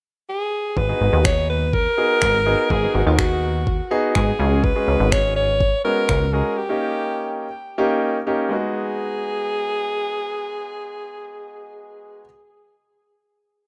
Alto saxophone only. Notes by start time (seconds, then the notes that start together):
0.29 G#4
0.77 B4
1.25 C#5
1.50 B4
1.74 A#4
2.71 G#4
2.95 F#4
3.07 F#4
4.15 G#4
4.64 B4
5.12 C#5
5.36 C#5
5.84 A#4
6.33 G#4
6.57 G4
8.50 G#4